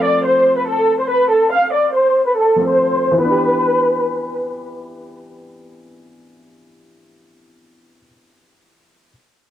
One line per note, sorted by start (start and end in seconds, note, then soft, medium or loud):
0.00 2.51 F3 medium
0.00 2.53 A3 medium
0.00 2.55 C4 medium
0.00 2.56 A4 medium
0.04 0.23 D5 medium
0.25 0.55 C5 medium
0.57 0.67 B4 medium
0.68 0.97 A4 medium
0.99 1.09 C5 medium
1.10 1.29 B4 medium
1.31 1.50 A4 medium
1.52 1.71 F5 medium
1.73 1.92 D5 medium
1.94 2.24 C5 medium
2.26 2.36 B4 medium
2.37 2.66 A4 medium
2.56 3.20 F3 medium
2.56 3.21 A3 soft
2.56 3.22 C4 soft
2.61 3.23 A4 medium
2.68 3.18 C5 medium
3.11 7.96 E3 medium
3.18 8.03 B3 medium
3.18 4.44 B4 loud
3.25 8.07 D4 medium
3.31 8.10 G4 medium